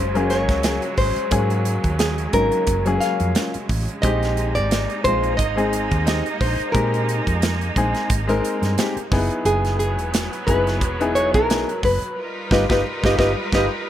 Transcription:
Already playing: F#1 C#3 F#3 G#3 C5
0.15 F#3 A#3 C#4 G#4, closed hi-hat
0.30 C#5, snare, closed hi-hat
0.49 C#2, kick, snare, closed hi-hat
0.63 F#3 A#3 C#4 G#4, snare, closed hi-hat
0.82 C#4 F4, closed hi-hat
0.97 G#1 C5, kick, open hi-hat
1.16 muted fingered electric bass stroke, closed hi-hat
1.31 G#2 F#3 A#3 C#4 G#4, kick, closed hi-hat
1.50 closed hi-hat
1.65 closed hi-hat
1.84 D#2, kick, closed hi-hat
1.99 G#4, snare, closed hi-hat
2.18 closed hi-hat
2.33 G#1 F#3 A#3 C#4 D#4 A#4, kick, closed hi-hat
2.52 closed hi-hat
2.66 F#1 C#4 F4, kick, closed hi-hat
2.85 F#3 A#3 C#4 G#4, closed hi-hat
3.00 F5, snare, closed hi-hat
3.20 F2, closed hi-hat
3.35 F#3 A#3 C#4 F4, snare, closed hi-hat
3.54 C#4 G#4, muted fingered electric bass stroke, closed hi-hat
3.69 A1, kick, open hi-hat
3.88 closed hi-hat
4.02 A#1 G#3 A#3 C4 D#4 G4 D#5, kick, closed hi-hat
4.23 snare, closed hi-hat
4.37 closed hi-hat
4.55 G#1 D5, closed hi-hat
4.71 snare, closed hi-hat
4.90 closed hi-hat
5.04 A#1 G#3 C4 D#4 F4 C5, kick, closed hi-hat
5.23 closed hi-hat
5.37 G#1 D#4 D#5, kick, closed hi-hat
5.41 A#4
5.56 G#3 C4 D#4 G#4, closed hi-hat
5.73 closed hi-hat
5.91 D#2, kick, closed hi-hat
6.05 G#3 C4 D#4 G4 D#5, snare, closed hi-hat
6.24 D#4 G4, closed hi-hat
6.41 A#1 C5, kick, open hi-hat
6.60 closed hi-hat
6.72 A#2 G#3 C4 D#4 G4 A#4, kick, closed hi-hat
6.94 closed hi-hat
7.09 closed hi-hat
7.27 F2, kick, closed hi-hat
7.42 snare, closed hi-hat
7.61 closed hi-hat
7.76 A#1 G#3 C4 D#4 G#4, kick, closed hi-hat
7.94 snare, closed hi-hat
8.10 G#1 D#4 G4, kick, closed hi-hat
8.27 G#3 C4 D#4 A#4, closed hi-hat
8.45 closed hi-hat
8.62 G2, snare, closed hi-hat
8.78 G#3 C4 D#4 G4, snare, closed hi-hat
8.96 D#4 A#4, muted fingered electric bass stroke, closed hi-hat
9.12 F#1 F#3 B3 D#4 E4 G#4, kick, snare, open hi-hat
9.31 closed hi-hat
9.45 F#1 G#4, closed hi-hat
9.65 snare, closed hi-hat
9.79 G#4, closed hi-hat
9.97 E1, closed hi-hat
10.14 snare, closed hi-hat
10.33 closed hi-hat
10.47 F#1 B3 D#4 E4 G#4 B4, kick, closed hi-hat
10.67 snare, closed hi-hat
10.81 E1 E4 G#4, kick, closed hi-hat
11.00 B3 D#4 E4 G#4, closed hi-hat
11.15 C#5, closed hi-hat
11.34 B1 A#4, kick, closed hi-hat
11.50 B3 D#4 E4 G#4, snare, closed hi-hat
11.68 E4 F#4, closed hi-hat
11.83 F#1 B4, kick, open hi-hat
12.02 muted fingered electric bass stroke, closed hi-hat
12.19 G3 D#4 F4 A#4 B4
12.51 G1 D#4 F4 G4 B4 D#5, kick, snare
12.69 G1 D#4 F4 G4 B4 D#5, kick, snare
13.03 G1 D#4 F4 G4 B4 D#5, kick, snare
13.19 G1 D#4 F4 G4 B4 D#5, kick, snare
13.52 G1 D#4 F4 G4 B4 D#5, kick, snare

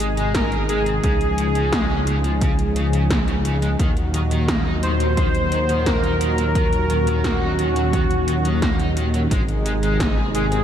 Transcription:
Already playing: G#1 C3 D#3 G#3 D#4 G#4
0.00 G#3, closed hi-hat
0.17 G#3, closed hi-hat
0.35 D#4 A#4, kick, snare, closed hi-hat
0.52 G#4, closed hi-hat
0.69 G#3 G#4, closed hi-hat
0.86 C4, closed hi-hat
1.04 C#2 C#3 F3 G#4, kick, closed hi-hat
1.21 closed hi-hat
1.38 C#3, closed hi-hat
1.55 C#3, closed hi-hat
1.73 G#3, kick, snare, closed hi-hat
1.90 C#4
2.07 C#3, closed hi-hat
2.24 F3, closed hi-hat
2.41 C#3, kick, closed hi-hat
2.59 closed hi-hat
2.76 C#3, closed hi-hat
2.93 C#3, closed hi-hat
3.10 C#3, kick, snare, closed hi-hat
3.28 C#3, closed hi-hat
3.45 C#3, closed hi-hat
3.62 G#3, closed hi-hat
3.79 D#2 A#2 D#3 F#3 D#4 F#4, kick, closed hi-hat
3.97 closed hi-hat
4.14 D#3, closed hi-hat
4.31 D#3, closed hi-hat
4.48 A#3, kick, snare, closed hi-hat
4.66 D#4
4.83 D#3 C5, closed hi-hat
5.00 F#3, closed hi-hat
5.17 D#3, kick, closed hi-hat
5.35 closed hi-hat
5.52 D#3, closed hi-hat
5.69 D#3, closed hi-hat
5.86 A#3 A#4, kick, snare, closed hi-hat
6.04 D#4, closed hi-hat
6.21 D#3, closed hi-hat
6.38 F#3, closed hi-hat
6.55 D#3 C#4 A#4, kick, closed hi-hat
6.73 closed hi-hat
6.90 D#3, closed hi-hat
7.07 D#3, closed hi-hat
7.24 A#3 F#4, kick, snare, closed hi-hat
7.42 D#4
7.59 D#3, closed hi-hat
7.76 F#3, closed hi-hat
7.93 D#3, kick, closed hi-hat
8.11 closed hi-hat
8.28 D#3, closed hi-hat
8.45 D#3, closed hi-hat
8.62 A#3, kick, snare, closed hi-hat
8.79 D#4, closed hi-hat
8.97 D#3, closed hi-hat
9.14 F#3, closed hi-hat
9.31 G#1 C3 G#3 D#4 G#4, kick, closed hi-hat
9.48 closed hi-hat
9.66 G#3, closed hi-hat
9.83 G#3, closed hi-hat
10.00 D#4, kick, snare, closed hi-hat
10.17 G#4
10.35 G#3 G#4, closed hi-hat
10.52 C4, closed hi-hat

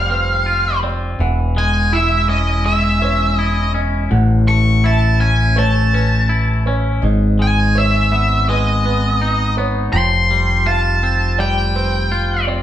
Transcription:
Already playing: F1 F3 G3 F4 D5 F5
0.10 C4 C5
0.46 F4
0.83 C4 D5
1.19 E1 E3 F#5
1.57 G#3 G#5
1.92 E4 E5
2.29 C#4 D#5
2.66 G#3 E5 D#6
3.02 C#4 C#5
3.36 E4 D#5
3.74 C#4 D#5
4.11 A1 A2 F#5
4.48 A3 C#6
4.84 E4 E5 A5
5.20 C#4 G#5
5.56 A3 C#5 A5
5.93 C#4 B4
6.29 E4
6.66 C#4 C#5
7.02 G#1 G#2 D#5
7.39 G#3 G#5
7.75 C#5 E5
8.12 B3
8.48 G#3 B4 D#5
8.84 B3 B4
9.22 D#4
9.57 B3 C#5
9.93 F1 F3 G5 C6
10.31 G3
10.66 F4 F5 A5
11.03 C4
11.39 G3 D5 G5
11.76 C4 C5
12.12 F4
12.47 C4 D5

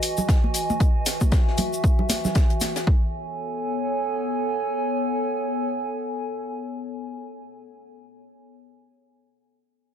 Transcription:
Already playing: E3 F#4 D#5 G#5
0.02 closed hi-hat, open hi-hat, shaker
0.17 low conga, shaker
0.29 kick, snare, closed hi-hat, shaker
0.44 high conga
0.54 closed hi-hat, open hi-hat, shaker
0.70 high conga, shaker
0.80 E5, kick, closed hi-hat, shaker
1.06 snare, closed hi-hat, open hi-hat, shaker
1.21 kick, high conga, shaker
1.32 kick, snare, closed hi-hat, shaker
1.47 snare
1.57 closed hi-hat, open hi-hat, high conga, low conga, shaker
1.73 shaker
1.84 kick, shaker
1.99 low conga
2.09 snare, closed hi-hat, open hi-hat, high conga, shaker
2.25 snare, low conga, shaker
2.35 kick, snare, closed hi-hat, shaker
2.50 closed hi-hat
2.60 snare, closed hi-hat, open hi-hat, high conga, shaker
2.76 snare, closed hi-hat, shaker
2.87 B3 A4 C#5 G#5, kick

